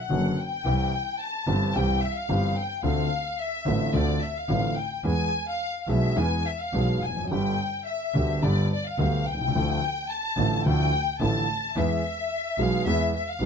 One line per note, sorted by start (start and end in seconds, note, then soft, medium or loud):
0.00 0.38 F#5 medium
0.10 0.33 F#1 medium
0.10 0.33 F#2 medium
0.10 0.33 D3 medium
0.10 0.33 F#3 medium
0.10 0.33 B3 medium
0.10 0.33 F#4 medium
0.39 1.20 G5 medium
0.64 0.87 C2 medium
0.64 0.88 C2 medium
0.64 0.88 C3 medium
0.64 0.88 E3 medium
0.64 0.88 G3 medium
0.64 0.88 C4 medium
0.64 0.88 G4 medium
1.20 1.75 A5 medium
1.47 1.70 G1 medium
1.47 1.70 G2 medium
1.47 1.70 E3 medium
1.47 1.70 G3 medium
1.47 1.70 C4 medium
1.47 1.70 G4 medium
1.74 1.97 C2 medium
1.74 1.98 C2 medium
1.74 1.98 C3 medium
1.74 1.98 E3 medium
1.74 1.98 G3 medium
1.74 1.98 C4 medium
1.74 1.98 G4 medium
1.74 2.02 G5 medium
2.03 2.16 E5 medium
2.17 2.57 F5 medium
2.29 2.52 G1 medium
2.29 2.52 G2 medium
2.29 2.52 E3 medium
2.29 2.52 G3 medium
2.29 2.52 C4 medium
2.29 2.52 G4 medium
2.57 2.84 G5 medium
2.83 3.06 D2 medium
2.83 3.06 D3 medium
2.83 3.07 A3 medium
2.83 3.06 C4 medium
2.83 3.07 F4 medium
2.83 3.36 F5 medium
3.39 3.94 E5 medium
3.65 3.89 A1 loud
3.65 3.89 A1 medium
3.65 3.89 A2 medium
3.65 3.89 D3 medium
3.65 3.89 A3 medium
3.65 3.89 C4 medium
3.65 3.90 F4 medium
3.93 4.17 D2 loud
3.93 4.17 D2 medium
3.93 4.17 D3 medium
3.93 4.17 A3 medium
3.93 4.17 C4 medium
3.93 4.17 F4 medium
3.93 4.22 D5 medium
4.23 4.36 E5 medium
4.36 4.77 F5 medium
4.48 4.72 A1 medium
4.48 4.72 A2 medium
4.48 4.72 D3 medium
4.48 4.73 A3 medium
4.48 4.73 C4 medium
4.48 4.73 F4 medium
4.77 5.05 G5 medium
5.04 5.28 E2 medium
5.04 5.28 E3 medium
5.04 5.28 G#3 medium
5.04 5.28 B3 medium
5.04 5.28 G#4 medium
5.04 5.44 G#5 medium
5.48 5.80 F5 medium
5.81 5.88 F5 medium
5.88 6.12 B1 medium
5.88 6.12 B2 medium
5.88 6.12 E3 medium
5.88 6.12 G#3 medium
5.88 6.12 B3 medium
5.88 6.13 G#4 medium
5.88 6.18 E5 medium
6.16 6.40 E2 medium
6.16 6.40 E3 medium
6.16 6.40 G#3 medium
6.16 6.41 B3 medium
6.16 6.40 G#4 medium
6.16 6.46 G#5 medium
6.47 6.60 E5 medium
6.60 7.02 F5 medium
6.73 6.97 B1 medium
6.73 6.98 B1 medium
6.73 6.98 B2 medium
6.73 6.97 E3 medium
6.73 6.97 G#3 medium
6.73 6.97 B3 medium
6.73 6.97 G#4 medium
7.01 7.29 F1 soft
7.01 7.31 G#5 medium
7.09 7.16 E2 soft
7.17 7.23 F2 medium
7.24 7.30 F#2 medium
7.29 7.53 G1 medium
7.29 7.54 G1 medium
7.29 7.54 G2 medium
7.29 7.54 D3 medium
7.29 7.54 G3 medium
7.29 7.54 B3 medium
7.29 7.55 G4 medium
7.29 7.82 G5 medium
7.87 8.43 E5 medium
8.14 8.38 D2 medium
8.14 8.38 D3 medium
8.14 8.39 G3 medium
8.14 8.38 B3 medium
8.14 8.39 G4 medium
8.41 8.65 G1 medium
8.41 8.66 G1 medium
8.41 8.66 G2 medium
8.41 8.66 D3 medium
8.41 8.66 G3 medium
8.41 8.66 B3 medium
8.41 8.66 G4 medium
8.41 8.71 D5 medium
8.73 8.85 D5 medium
8.86 9.27 F5 medium
8.98 9.21 D2 medium
8.98 9.22 D2 medium
8.98 9.22 D3 medium
8.98 9.22 G3 medium
8.98 9.22 B3 medium
8.98 9.22 G4 medium
9.25 9.52 C2 medium
9.25 10.10 G5 loud
9.35 9.41 B1 soft
9.41 9.47 C2 medium
9.48 9.54 C#2 medium
9.53 9.77 D2 medium
9.53 9.78 D2 medium
9.53 9.78 D3 medium
9.53 9.78 F3 medium
9.53 9.78 A3 medium
9.53 9.78 E4 medium
10.11 10.66 A5 medium
10.37 10.60 A1 loud
10.37 10.61 A1 medium
10.37 10.61 A2 medium
10.37 10.61 D3 medium
10.37 10.61 F3 medium
10.37 10.61 A3 medium
10.37 10.61 E4 medium
10.65 10.88 D2 medium
10.65 10.89 D2 medium
10.65 10.89 D3 medium
10.65 10.89 F3 medium
10.65 10.89 A3 medium
10.65 10.89 E4 medium
10.65 11.17 G5 loud
11.20 11.43 A1 medium
11.20 11.44 A1 medium
11.20 11.44 A2 medium
11.20 11.44 D3 medium
11.20 11.44 F3 medium
11.20 11.44 A3 medium
11.20 11.44 E4 medium
11.20 11.76 A5 medium
11.76 11.99 E2 medium
11.76 11.99 E3 medium
11.76 11.99 G#3 medium
11.76 11.99 B3 medium
11.76 11.99 G#4 medium
11.76 12.59 E5 medium
12.57 12.81 B1 medium
12.57 12.82 B1 medium
12.57 12.82 B2 medium
12.57 12.82 E3 medium
12.57 12.82 G#3 medium
12.57 12.82 B3 medium
12.57 12.82 G#4 medium
12.62 12.87 F5 medium
12.85 13.08 E2 medium
12.85 13.09 E2 medium
12.85 13.09 E3 medium
12.85 13.09 G#3 medium
12.85 13.10 B3 medium
12.85 13.09 G#4 medium
12.85 13.13 E5 loud
13.15 13.27 E5 medium
13.29 13.46 F5 medium
13.39 13.46 B1 medium
13.39 13.46 B2 medium
13.39 13.46 E3 medium
13.39 13.46 G#3 medium
13.39 13.46 B3 medium
13.39 13.46 G#4 medium